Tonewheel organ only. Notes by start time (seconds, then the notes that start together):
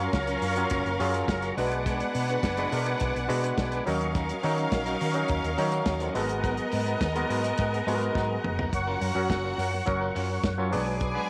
Already playing: A#4 F5 A#5 C#6
1.57 B3 F#5 G#5 D6
3.87 F#4 A#4 D#5 C#6
6.16 B3 G#4 F#5 A#5
8.74 A#4 C#5 F#5 C#6
10.72 B4 G#5 D6